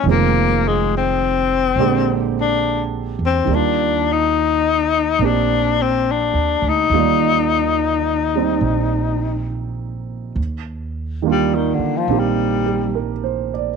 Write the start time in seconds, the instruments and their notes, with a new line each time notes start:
0.04 upright bass F1, grand piano D#3 F3
0.08 grand piano G#3 C4 F4, tenor saxophone A#3
0.68 tenor saxophone G#3
0.97 tenor saxophone C4
1.76 upright bass A#1, grand piano D3 G#3 A#3
1.80 grand piano C4 G4
2.40 tenor saxophone D4
3.19 upright bass E2
3.26 tenor saxophone C4
3.45 upright bass D#2, grand piano D#3 G3
3.51 grand piano A#3 D5
3.55 tenor saxophone D4, grand piano F4
4.12 tenor saxophone D#4
5.19 upright bass A#1, grand piano A#3 C4
5.24 tenor saxophone D4, grand piano G4
5.82 tenor saxophone C4
6.11 tenor saxophone D4
6.34 upright bass D#2
6.62 upright bass D2
6.69 tenor saxophone D#4
6.90 upright bass D#2, grand piano D#3 G3
6.94 grand piano A#3 F4 D5
8.35 grand piano G3 C4 D#4
8.61 upright bass A#1
10.36 upright bass D#2
11.22 grand piano D#3 G3 A#3
11.26 grand piano D4 F4
11.31 tenor saxophone G3
11.55 tenor saxophone D#3
11.74 tenor saxophone D3
11.79 muted upright bass stroke
11.98 tenor saxophone F3
12.08 upright bass A#1, grand piano A#3 C4 D#4 G4
12.19 tenor saxophone G3
12.66 grand piano G4
12.95 grand piano A#4
13.24 grand piano C5
13.54 grand piano D5